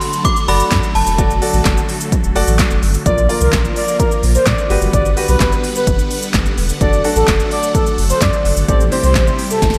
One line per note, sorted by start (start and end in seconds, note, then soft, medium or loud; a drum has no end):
0.00 3.02 D3 medium
0.00 3.02 F#3 medium
0.00 3.02 A3 medium
0.00 3.02 F#4 medium
0.00 3.02 A4 medium
0.00 0.22 C6 loud
0.00 open hi-hat medium
0.00 shaker medium
0.13 shaker medium
0.25 0.47 D6 loud
0.25 kick loud
0.25 closed hi-hat medium
0.25 shaker medium
0.36 shaker medium
0.48 0.62 F#1 medium
0.48 0.85 F#4 medium
0.48 0.85 A4 medium
0.48 0.85 D5 medium
0.48 0.97 B5 loud
0.48 open hi-hat medium
0.48 shaker medium
0.60 shaker medium
0.71 0.79 F#2 loud
0.71 kick loud
0.71 snare medium
0.71 clap loud
0.71 closed hi-hat medium
0.71 shaker medium
0.83 shaker medium
0.95 1.02 F#1 medium
0.95 1.85 A5 medium
0.95 open hi-hat medium
0.95 shaker soft
1.07 1.20 E1 medium
1.07 shaker medium
1.18 1.40 F#1 loud
1.18 1.31 F#4 medium
1.18 1.31 A4 medium
1.18 1.31 D5 medium
1.18 kick loud
1.18 closed hi-hat medium
1.18 shaker medium
1.30 shaker medium
1.42 1.91 F#4 medium
1.42 1.91 A4 medium
1.42 1.92 D5 medium
1.42 open hi-hat medium
1.42 shaker medium
1.53 1.61 A1 medium
1.53 shaker medium
1.65 1.80 F#1 loud
1.65 kick loud
1.65 snare medium
1.65 clap loud
1.65 closed hi-hat medium
1.65 shaker medium
1.77 shaker medium
1.89 open hi-hat medium
1.89 shaker medium
2.01 shaker medium
2.12 kick loud
2.12 closed hi-hat medium
2.12 shaker medium
2.24 2.31 E1 medium
2.24 shaker medium
2.35 2.43 F#1 medium
2.35 2.73 F#4 medium
2.35 2.73 A4 medium
2.35 2.73 D5 loud
2.35 open hi-hat medium
2.35 shaker medium
2.47 2.62 A1 medium
2.47 shaker medium
2.59 kick loud
2.59 snare loud
2.59 clap loud
2.59 closed hi-hat medium
2.59 shaker medium
2.71 2.78 F#1 loud
2.71 shaker medium
2.83 2.97 G1 medium
2.83 open hi-hat medium
2.83 shaker soft
2.94 shaker medium
3.06 3.27 A#1 loud
3.06 8.65 D3 medium
3.06 4.68 F3 medium
3.06 4.68 A#3 medium
3.06 3.18 F4 medium
3.06 4.68 F4 medium
3.06 3.18 A#4 medium
3.06 4.68 A#4 medium
3.06 3.27 D5 loud
3.06 3.18 D5 medium
3.06 kick loud
3.06 closed hi-hat medium
3.06 shaker medium
3.18 shaker medium
3.29 3.79 F4 medium
3.29 3.79 A#4 medium
3.29 3.79 D5 medium
3.29 open hi-hat medium
3.29 shaker medium
3.41 3.48 C2 loud
3.41 3.52 A#4 medium
3.41 shaker medium
3.53 3.67 A#1 medium
3.53 kick loud
3.53 snare medium
3.53 clap loud
3.53 closed hi-hat medium
3.53 shaker medium
3.65 shaker medium
3.76 3.97 D5 medium
3.76 open hi-hat medium
3.76 shaker medium
3.88 shaker medium
4.00 4.10 A#4 medium
4.00 kick loud
4.00 closed hi-hat medium
4.00 shaker medium
4.11 shaker medium
4.23 4.37 A#1 loud
4.23 open hi-hat medium
4.23 shaker medium
4.35 4.45 C5 medium
4.35 shaker medium
4.46 4.54 A#2 loud
4.46 4.80 D5 medium
4.46 kick loud
4.46 snare medium
4.46 clap loud
4.46 closed hi-hat medium
4.46 shaker medium
4.58 shaker soft
4.70 4.77 G1 loud
4.70 6.79 G3 medium
4.70 6.79 B3 medium
4.70 5.07 F#4 medium
4.70 5.08 G4 medium
4.70 6.79 B4 medium
4.70 5.08 B4 medium
4.70 8.64 F#5 medium
4.70 open hi-hat medium
4.70 shaker soft
4.82 4.89 F#1 medium
4.82 shaker medium
4.93 5.15 G1 loud
4.93 5.04 D5 loud
4.93 kick loud
4.93 closed hi-hat medium
4.93 shaker medium
5.05 shaker medium
5.17 5.66 F#4 medium
5.17 5.66 G4 medium
5.17 5.67 B4 medium
5.17 open hi-hat medium
5.17 shaker medium
5.28 5.36 B1 loud
5.28 5.39 B4 medium
5.28 shaker medium
5.40 5.55 G1 loud
5.40 5.51 B4 medium
5.40 kick loud
5.40 snare medium
5.40 clap loud
5.40 closed hi-hat medium
5.40 shaker medium
5.52 shaker medium
5.64 open hi-hat medium
5.64 shaker medium
5.76 6.09 B4 medium
5.76 shaker medium
5.87 6.01 F#1 loud
5.87 kick loud
5.87 closed hi-hat medium
5.87 shaker medium
5.99 shaker medium
6.11 open hi-hat medium
6.11 shaker medium
6.22 shaker medium
6.34 6.48 G1 loud
6.34 kick loud
6.34 snare medium
6.34 clap loud
6.34 closed hi-hat medium
6.34 shaker medium
6.46 shaker medium
6.58 6.72 E1 medium
6.58 open hi-hat medium
6.58 shaker soft
6.69 shaker medium
6.81 7.02 F#1 loud
6.81 8.67 F#3 medium
6.81 8.67 A3 medium
6.81 6.93 D4 medium
6.81 6.93 F#4 medium
6.81 8.67 A4 medium
6.81 6.94 A4 medium
6.81 7.02 D5 loud
6.81 kick loud
6.81 closed hi-hat medium
6.81 shaker medium
6.93 shaker medium
7.04 7.54 D4 medium
7.04 7.54 F#4 medium
7.04 7.54 A4 medium
7.04 open hi-hat medium
7.04 shaker medium
7.16 7.23 A1 loud
7.16 7.27 A4 medium
7.16 shaker medium
7.28 7.42 F#1 medium
7.28 kick loud
7.28 snare medium
7.28 clap loud
7.28 closed hi-hat medium
7.28 shaker medium
7.40 shaker medium
7.51 7.72 D5 medium
7.51 open hi-hat medium
7.51 shaker medium
7.63 shaker medium
7.75 7.85 A4 medium
7.75 kick loud
7.75 closed hi-hat medium
7.75 shaker medium
7.86 shaker medium
7.98 8.12 F#1 medium
7.98 open hi-hat medium
7.98 shaker medium
8.10 8.20 C5 medium
8.10 shaker medium
8.21 8.29 F#2 loud
8.21 8.55 D5 medium
8.21 kick loud
8.21 snare loud
8.21 clap loud
8.21 closed hi-hat medium
8.21 shaker medium
8.33 shaker soft
8.45 8.52 F#1 medium
8.45 open hi-hat medium
8.45 shaker soft
8.57 8.64 G1 medium
8.57 shaker medium
8.68 8.90 A1 loud
8.68 9.78 C3 medium
8.68 9.78 G3 medium
8.68 9.78 A3 medium
8.68 8.81 C4 medium
8.68 9.78 E4 medium
8.68 9.78 G4 medium
8.68 8.81 G4 medium
8.68 8.81 A4 medium
8.68 8.79 D5 loud
8.68 kick loud
8.68 closed hi-hat medium
8.68 shaker medium
8.80 shaker medium
8.92 9.41 C4 medium
8.92 9.41 G4 medium
8.92 9.42 C5 medium
8.92 open hi-hat medium
8.92 shaker medium
9.03 9.17 C2 medium
9.03 9.14 C5 medium
9.03 shaker medium
9.15 9.30 A1 loud
9.15 9.26 C5 medium
9.15 kick loud
9.15 snare medium
9.15 clap loud
9.15 closed hi-hat medium
9.15 shaker medium
9.27 shaker medium
9.39 open hi-hat medium
9.39 shaker medium
9.51 9.78 A4 medium
9.51 shaker medium
9.62 9.76 G1 loud
9.62 kick loud
9.62 snare medium
9.62 closed hi-hat medium
9.62 shaker medium
9.70 snare medium
9.70 shaker medium